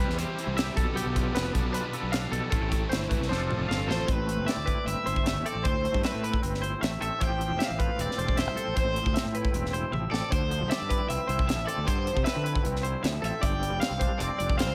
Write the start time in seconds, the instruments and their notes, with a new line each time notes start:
Already playing: clean electric guitar C3 E4 G4 B4, overdriven electric guitar G4
0.00 overdriven electric guitar C3 E3 G3 C4, clean electric guitar G3
0.08 fingered electric bass E2, snare
0.17 overdriven electric guitar E3 G3 C4 G4, clean electric guitar C5, closed hi-hat
0.37 overdriven electric guitar G3 C4 G4, clean electric guitar E4, closed hi-hat
0.47 fingered electric bass C2
0.55 overdriven electric guitar C3 E3 G3 C4 G4, clean electric guitar G4 E5, snare, closed hi-hat
0.76 fingered electric bass B1, clean electric guitar B2 A4, overdriven electric guitar B2 F3 B3 D4 G4, kick, closed hi-hat
0.95 fingered electric bass B1, overdriven electric guitar B2 F3 B3 D4 G4, clean electric guitar B3 G4, closed hi-hat
1.05 fingered electric bass B1
1.15 overdriven electric guitar B3 D4 G4, clean electric guitar F4, kick, closed hi-hat
1.34 fingered electric bass F1, overdriven electric guitar F3 B3 D4 G4, clean electric guitar B3 B4, snare, closed hi-hat
1.53 fingered electric bass B1, overdriven electric guitar B2 F3 B3 D4 G4, clean electric guitar D4 A4, kick, closed hi-hat
1.65 fingered electric bass B1
1.73 overdriven electric guitar F3 B3 D4 G4, clean electric guitar F4 B4, closed hi-hat
1.92 overdriven electric guitar B3 D4 G4, clean electric guitar A4, closed hi-hat
2.03 fingered electric bass B1
2.12 overdriven electric guitar B2 F3 B3 D4 G4, clean electric guitar D4 F5, snare, closed hi-hat
2.31 fingered electric bass B1, clean electric guitar B2 A4, overdriven electric guitar D4 G4, closed hi-hat
2.36 overdriven electric guitar B3
2.50 fingered electric bass A1, overdriven electric guitar A2 E3 A3 C4 E4, clean electric guitar A2 F4 A4, kick, closed hi-hat
2.61 fingered electric bass A1, clean electric guitar G4
2.71 clean electric guitar A3, overdriven electric guitar A3 C4 E4, kick, closed hi-hat
2.89 fingered electric bass G1, overdriven electric guitar E3 A3 C4 E4, clean electric guitar E4 C5, snare, closed hi-hat
3.09 fingered electric bass A1, overdriven electric guitar A2 E3 A3 C4 E4, clean electric guitar A3 B4, kick, closed hi-hat
3.20 fingered electric bass C2, snare
3.29 fingered electric bass F1, clean electric guitar F2 F3 D4 F4 A4 C5, overdriven electric guitar F3 A3 C4 F4, snare
3.49 clean electric guitar F3, overdriven electric guitar A3 C4 F4, mid tom
3.59 fingered electric bass F1
3.69 fingered electric bass G1, overdriven electric guitar F3 A3 C4 F4, clean electric guitar F4 F5, snare
3.88 fingered electric bass A1, clean electric guitar F3 A4, overdriven electric guitar A3 C4 F4 C5, snare
4.07 fingered electric bass A1, clean electric guitar A2 C4, kick, closed hi-hat
4.12 overdriven electric guitar B4
4.26 clean electric guitar A3, closed hi-hat
4.37 fingered electric bass G1
4.47 clean electric guitar C4 E5, overdriven electric guitar D5, snare, closed hi-hat
4.56 fingered electric bass D2
4.66 clean electric guitar E4 B4, kick, closed hi-hat
4.86 fingered electric bass G1, clean electric guitar C4, overdriven electric guitar E5, closed hi-hat
5.05 fingered electric bass G1, clean electric guitar E4 C5, closed hi-hat
5.16 kick
5.23 clean electric guitar A3 E5, closed hi-hat
5.27 snare
5.36 fingered electric bass E2
5.45 clean electric guitar C4 A4, overdriven electric guitar D5, closed hi-hat
5.55 fingered electric bass A1
5.64 fingered electric bass D2, clean electric guitar A2 C5, overdriven electric guitar C5, kick, closed hi-hat
5.84 clean electric guitar A3, closed hi-hat
5.94 fingered electric bass G2, kick
6.03 clean electric guitar C4 E5, overdriven electric guitar B4, snare, closed hi-hat
6.14 fingered electric bass A2
6.24 clean electric guitar E4 B4, closed hi-hat
6.34 kick
6.42 fingered electric bass G1, clean electric guitar C4, closed hi-hat
6.54 snare
6.61 clean electric guitar E4 C5, closed hi-hat
6.81 fingered electric bass A1, clean electric guitar A3 E5, snare, closed hi-hat
7.00 fingered electric bass A1, clean electric guitar C4 A4, overdriven electric guitar E5, closed hi-hat
7.20 fingered electric bass A1, clean electric guitar A2 F3 C4 F4 G4 C5, overdriven electric guitar G5, kick, closed hi-hat
7.40 clean electric guitar F3, closed hi-hat
7.50 fingered electric bass E1
7.59 clean electric guitar C4 E5, snare, closed hi-hat
7.64 overdriven electric guitar F5
7.70 fingered electric bass A1
7.79 clean electric guitar F4 B4, kick, closed hi-hat
7.99 fingered electric bass E1, clean electric guitar C4, overdriven electric guitar D5, closed hi-hat
8.11 snare
8.18 fingered electric bass E1, clean electric guitar F4 C5, closed hi-hat
8.28 kick
8.37 clean electric guitar F3 E5, overdriven electric guitar C5, snare, closed hi-hat
8.47 fingered electric bass C2
8.57 clean electric guitar C4 A4, closed hi-hat
8.67 fingered electric bass A1
8.76 fingered electric bass A1, clean electric guitar A2 C5, overdriven electric guitar C5, kick, closed hi-hat
8.96 clean electric guitar F3, closed hi-hat
9.06 fingered electric bass D2, kick
9.14 clean electric guitar E5, snare, closed hi-hat
9.18 clean electric guitar C4
9.25 fingered electric bass A2
9.35 clean electric guitar E4 B4, closed hi-hat
9.45 kick
9.54 fingered electric bass E1, clean electric guitar C4, closed hi-hat
9.66 snare
9.73 clean electric guitar E4 C5, closed hi-hat
9.92 fingered electric bass A1, clean electric guitar F3 E5, high tom
10.11 fingered electric bass A1, clean electric guitar C4 A4, overdriven electric guitar D5, snare
10.31 fingered electric bass D2, clean electric guitar D3 C5, overdriven electric guitar C5, kick, closed hi-hat
10.51 clean electric guitar F3, closed hi-hat
10.62 fingered electric bass C2
10.70 clean electric guitar C4 E5, overdriven electric guitar D5, snare, closed hi-hat
10.81 fingered electric bass G2
10.89 clean electric guitar E4 B4, kick, closed hi-hat
11.09 fingered electric bass C2, clean electric guitar C4, overdriven electric guitar E5, closed hi-hat
11.28 fingered electric bass C2, clean electric guitar E4 C5, closed hi-hat
11.39 kick
11.47 clean electric guitar F3 E5, snare, closed hi-hat
11.57 fingered electric bass A1
11.66 clean electric guitar C4 A4, overdriven electric guitar D5, closed hi-hat
11.77 fingered electric bass D2
11.87 fingered electric bass G2, clean electric guitar D3 C5, overdriven electric guitar C5, kick, closed hi-hat
12.07 clean electric guitar F3, closed hi-hat
12.16 fingered electric bass C3, kick
12.24 clean electric guitar C4 E5, overdriven electric guitar B4, snare, closed hi-hat
12.36 fingered electric bass D3
12.44 clean electric guitar E4 B4, closed hi-hat
12.55 kick
12.65 fingered electric bass C2, clean electric guitar C4, closed hi-hat
12.76 snare
12.83 clean electric guitar E4 C5, closed hi-hat
13.03 fingered electric bass D2, clean electric guitar F3 E5, snare, closed hi-hat
13.22 fingered electric bass A1, clean electric guitar C4 A4, overdriven electric guitar E5, closed hi-hat
13.42 fingered electric bass G1, clean electric guitar G2 D5, overdriven electric guitar G5, kick, closed hi-hat
13.63 clean electric guitar G3, closed hi-hat
13.72 fingered electric bass F1
13.80 clean electric guitar C4 F5, overdriven electric guitar F5, snare, closed hi-hat
13.91 fingered electric bass C2
14.00 clean electric guitar D4 C5, kick, closed hi-hat
14.19 fingered electric bass F1, clean electric guitar C4, overdriven electric guitar D5, closed hi-hat
14.39 fingered electric bass F1, clean electric guitar D4 D5, closed hi-hat
14.50 kick
14.58 clean electric guitar G3 F5, overdriven electric guitar C5, snare, closed hi-hat
14.69 fingered electric bass D2